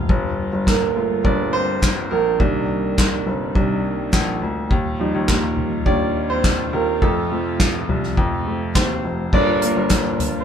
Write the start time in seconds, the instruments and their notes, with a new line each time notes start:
Already playing: string section F4
0.09 grand piano G1, string section A#2 D3 G3, kick
0.53 grand piano G1
0.67 grand piano G1 A#3 A#4, kick, snare, clap
0.96 grand piano A3 A#3 F4
1.24 grand piano G1 D4 D5, kick
1.53 grand piano C4 C5
1.82 kick, snare, clap
2.11 grand piano A#1 A#3 A#4
2.39 grand piano C2 D#3 A#3 D4, string section C3 D#3 G3, kick
2.98 kick, snare, clap
3.26 grand piano G1
3.55 grand piano C2 D#3 A#3 D4, kick
4.13 grand piano A#1, kick, snare, clap
4.42 grand piano D2
4.71 grand piano D#2, string section D#3 F4, kick
4.99 grand piano F3 G3 D#4
5.14 grand piano D#2
5.28 grand piano D#2 A#3 A#4, kick, snare, clap
5.57 floor tom
5.86 grand piano D#2 D4 D5, kick
6.30 grand piano C4 C5
6.44 kick, snare, clap
6.73 grand piano D#2 A#3 A#4
7.02 grand piano F2 A3 A4, string section C3 F3 A3, kick
7.31 grand piano F3 A3 C4
7.60 kick, snare, clap
7.89 grand piano C2, floor tom
8.03 snare
8.17 grand piano F2, kick
8.47 grand piano F3 A3 C4
8.75 grand piano D#2 C4 C5, kick, snare, clap
9.04 grand piano F1
9.32 grand piano G1 A#3 D4 F4 A4 D5, string section D3 G3 A#3 F4, kick, crash
9.61 grand piano A#3 A#4, closed hi-hat
9.76 grand piano G1
9.89 grand piano G1, kick, snare, clap, closed hi-hat
10.19 closed hi-hat, floor tom
10.40 grand piano C5